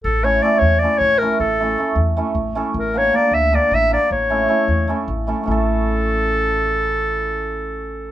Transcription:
<<
  \new Staff \with { instrumentName = "Clarinet" } { \time 7/8 \key a \major \tempo 4 = 155 a'8 cis''8 d''8 cis''8 d''8 cis''8 bes'8 | a'2 r4. | bes'8 cis''8 d''8 e''8 d''8 e''8 d''8 | cis''2~ cis''8 r4 |
a'2.~ a'8~ | a'2.~ a'8 | }
  \new Staff \with { instrumentName = "Hammered dulcimer" } { \time 7/8 \key a \major r8 <a cis' e' a'>8 <a cis' e' a'>8 r8 <a cis' e' a'>8 r8 <a cis' e' a'>8 | r8 <a cis' e' a'>8 <a cis' e' a'>8 r8 <a cis' e' a'>8 r8 <a cis' e' a'>8 | r8 <bes d' g' bes'>8 <bes d' g' bes'>8 r8 <bes d' g' bes'>8 r8 <bes d' g' bes'>8 | r8 <a cis' e' a'>8 <a cis' e' a'>8 r8 <a cis' e' a'>8 r8 <a cis' e' a'>8 |
<a cis' e' a'>2.~ <a cis' e' a'>8~ | <a cis' e' a'>2.~ <a cis' e' a'>8 | }
  \new Staff \with { instrumentName = "Upright bass" } { \clef bass \time 7/8 \key a \major a,,4. e,4 a,,4 | a,,4. e,4 a,,4 | a,,4. d,4 a,,4 | a,,4. e,4 a,,4 |
a,,2.~ a,,8~ | a,,2.~ a,,8 | }
>>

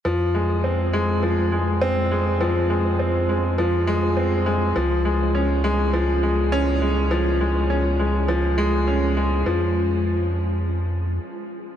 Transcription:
<<
  \new Staff \with { instrumentName = "Upright piano" } { \clef bass \time 4/4 \key f \minor \tempo 4 = 102 f8 aes8 c'8 aes8 f8 aes8 c'8 aes8 | f8 aes8 c'8 aes8 f8 aes8 c'8 aes8 | f8 aes8 des'8 aes8 f8 aes8 des'8 aes8 | f8 aes8 des'8 aes8 f8 aes8 des'8 aes8 |
f8 r2. r8 | }
  \new Staff \with { instrumentName = "Sub bass" } { \clef bass \time 4/4 \key f \minor f,1~ | f,1 | des,1~ | des,1 |
f,2. r4 | }
>>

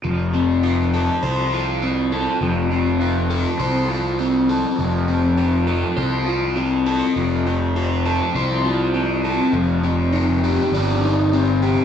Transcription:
<<
  \new Staff \with { instrumentName = "Overdriven electric guitar" } { \time 4/4 \key f \mixolydian \tempo 4 = 101 f8 c'8 f'8 a'8 c''8 f'8 c'8 a'8 | f8 c'8 f'8 a'8 c''8 f'8 c'8 a'8 | f8 c'8 f'8 a'8 c''8 f'8 c'8 a'8 | f8 c'8 f'8 a'8 c''8 f'8 c'8 a'8 |
f8 c'8 ees'8 g'8 d''8 ees'8 c'8 g'8 | }
  \new Staff \with { instrumentName = "Fingered electric bass" } { \clef bass \time 4/4 \key f \mixolydian f,,2 c,2 | f,,2 c,2 | f,,2 c,2 | f,,2 c,2 |
f,,2 g,,2 | }
>>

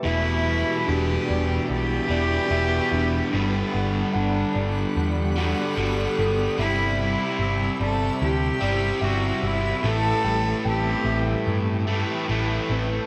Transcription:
<<
  \new Staff \with { instrumentName = "Ambient pad" } { \time 4/4 \key e \minor \tempo 4 = 74 << { <d'' g''>1 | <fis'' b''>1 | e''1 | g''1 | } \\ { e'1 | g1~ | g1 | a'1 | } >> }
  \new Staff \with { instrumentName = "Felt piano" } { \time 4/4 \key e \minor e''4 r8 d''4 d''8 e''8 e''8~ | e''8 fis''8 fis''8 d''4 r4 a'8 | e''4 r8 d''4 d''8 e''8 e''8~ | e''8 g''8 g''8 e''4 r4 b'8 | }
  \new Staff \with { instrumentName = "Cello" } { \time 4/4 \key e \minor e'4 g'4 g'2 | b4 d'4 r2 | e'8 e'4 a'8 g'4 fis'8 e'8 | a'4 g'4 r2 | }
  \new Staff \with { instrumentName = "Clean electric guitar" } { \time 4/4 \key e \minor e,8 g8 d'8 g8 b8 e'8 b8 d'8 | g8 g8 b8 g8 d'8 fis'8 d'8 b8 | g8 g8 c'8 g8 e'4 e'8 c'8 | a,8 g8 c'8 g8 e'8 g'8 e'8 c'8 | }
  \new Staff \with { instrumentName = "Distorted electric guitar" } { \clef bass \time 4/4 \key e \minor <e, b, e>2~ <e, b, e>8 <e, b, e>8 <e, b, e>4 | <g, d g>2~ <g, d g>8 <g, d g>8 <g, d g>4 | <c g c'>2~ <c g c'>8 <c g c'>8 <c g c'>4 | <a, e a>2~ <a, e a>8 <a, e a>8 <a, e a>4 | }
  \new Staff \with { instrumentName = "Picked electric bass" } { \clef bass \time 4/4 \key e \minor e,,4 e,,8 e,,8 b,,8 e,,8 e,,8 e,,8 | g,,8 g,,8 g,,8 g,,8 e,4 g,,8 g,,8 | g,,4 g,,8 g,,8 d,8 g,,8 g,,8 g,,8 | a,,8 a,,8 a,,8 a,,8 g,4 a,,8 a,,8 | }
>>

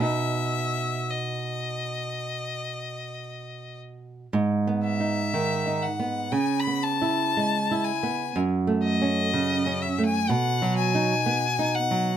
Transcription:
<<
  \new Staff \with { instrumentName = "Violin" } { \time 4/4 \key b \mixolydian \tempo 4 = 59 e''4 dis''2~ dis''8 r8 | r8 e''4 fis''8 gis''16 b''16 a''4 gis''8 | r8 dis''4 e''16 gis''16 fis''8 gis''4 fis''8 | }
  \new Staff \with { instrumentName = "Nylon-string guitar" } { \time 4/4 \key b \mixolydian <b, b dis'>1 | \tuplet 3/2 { gis,8 b8 dis'8 dis8 dis'8 b8 cis8 b8 e'8 gis8 e'8 b8 } | \tuplet 3/2 { fis,8 a8 cis'8 cis8 cis'8 a8 b,8 fis8 dis'8 b8 dis'8 fis8 } | }
>>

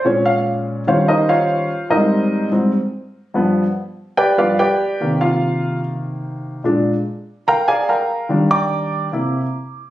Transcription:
<<
  \new Staff \with { instrumentName = "Grand piano" } { \time 4/4 \key ees \major \tempo 4 = 145 des''8 f''8 r4 <f' c'' des'' f''>8 <ees' bes' c'' ees''>8 <f' c'' des'' f''>4~ | <f' c'' des'' f''>8 <ees' bes' c'' ees''>4. r2 | r2 <g' b' d'' g''>8 <f' b' d'' f''>8 <g' b' d'' g''>4~ | <g' b' d'' g''>8 <f' f''>4. r2 |
r2 <bes' f'' g'' bes''>8 <aes' d'' f'' aes''>8 <bes' f'' g'' bes''>4~ | <bes' f'' g'' bes''>8 <d'' g'' bes'' d'''>4. r2 | }
  \new Staff \with { instrumentName = "Grand piano" } { \clef bass \time 4/4 \key ees \major <bes, aes des'>2 <ees g des'>2 | r8 <aes, g c'>4. <aes, g c'>8 r4. | <g, f b>8 r2 <g, f b>8 r4 | <c ees bes>1 |
<bes, aes d'>8 r2. r8 | <ees g d'>2 <c bes e'>8 r4. | }
>>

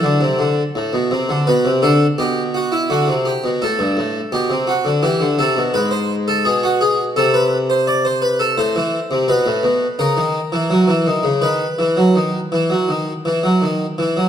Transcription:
<<
  \new Staff \with { instrumentName = "Harpsichord" } { \time 4/4 \key d \dorian \tempo 4 = 84 a'2 b'8 a'8 g'8 fis'16 e'16 | fis'8 g'8 a'4 g'8 fis'8 g'8 a'8 | b'16 c''8 a'16 aes'16 ges'16 aes'8 a'16 b'8 c''16 d''16 c''16 b'16 a'16 | \key b \phrygian c''4 b'4 ais'2 |
b'2.~ b'8 r8 | }
  \new Staff \with { instrumentName = "Harpsichord" } { \clef bass \time 4/4 \key d \dorian d16 c16 d8 a,16 b,16 c16 d16 b,16 c16 d8 b,4 | d16 c8 b,16 a,16 g,16 a,8 b,16 c8 d16 e16 d16 c16 b,16 | aes,4 b,4 c2 | \key b \phrygian a,16 e8 c16 b,16 a,16 b,8 cis16 dis8 e16 fis16 e16 dis16 cis16 |
dis8 e16 fis16 dis8 e16 fis16 dis8 e16 fis16 dis8 e16 fis16 | }
>>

